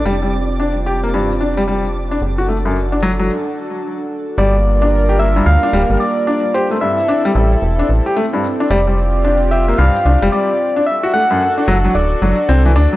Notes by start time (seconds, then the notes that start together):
Already playing: D4 D5
0.05 F1 G3 C4 F4 G4
0.22 G3
0.60 D4
0.86 G4
1.03 A#3
1.14 G2
1.41 D4
1.57 G3
1.68 G3
2.11 D4
2.21 F#1 D4 F#4 A4
2.38 F#4
2.49 A3
2.65 F#2
2.92 D4
3.03 F#3
3.19 F#3
4.38 G1 G3 A#3 D4 F4 A#4 D5
4.82 D4
5.09 G4
5.19 A#3 E5
5.36 G2
5.46 D2 F5
5.63 D4
5.73 D1 G3
5.90 G1 G3
6.00 D5
6.27 D4 D5
6.54 C4 E4 G4 A4 C5
6.71 A3
6.81 G2 E5
7.08 D4
7.25 G3
7.35 A1 G3
7.62 E1
7.79 D4
7.89 A1
8.06 G4
8.16 A3
8.33 G2
8.60 D4
8.70 F1 G3 F4 G4 D5
8.87 G3
9.24 D4
9.51 G4 E5
9.68 A#3
9.78 C2 G2 F5
10.05 C2 D4
10.22 F1 G3
10.32 G3 D5
10.76 D4
10.87 D4 F#4 A4 E5
11.03 F#4
11.14 A3 F#5
11.31 F#2
11.58 D4
11.68 F#1 F#3
11.85 F#3
11.95 D1 D5
12.22 F#1 F#3
12.49 C2 C4
12.66 E3
12.76 D2 D4
12.93 F#3